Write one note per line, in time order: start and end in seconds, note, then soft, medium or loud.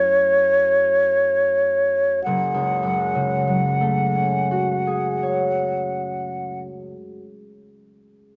0.00 2.26 F#2 soft
0.00 2.58 A3 soft
0.00 2.28 E4 soft
0.00 2.62 F#4 soft
0.00 2.23 C#5 medium
0.00 2.64 C#5 soft
2.24 6.62 F#1 soft
2.24 6.59 F#5 soft
2.54 6.90 C#2 soft
2.83 7.18 F#2 soft
3.15 7.50 C#3 soft
3.47 7.68 F#3 soft
3.81 7.68 A3 soft
4.15 7.68 C#4 soft
4.51 7.68 F#4 soft
4.87 7.68 G#4 soft
5.23 7.67 C#5 soft